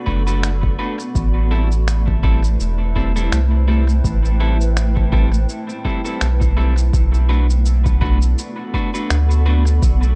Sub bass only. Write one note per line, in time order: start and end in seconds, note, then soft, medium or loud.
0.07 0.76 F#1 medium
1.15 2.57 A1 medium
2.61 3.29 E1 loud
3.32 4.01 C2 loud
4.04 5.46 A1 loud
6.21 6.91 B1 medium
6.93 8.35 B1 loud
9.10 9.80 D2 loud
9.82 10.15 B1 loud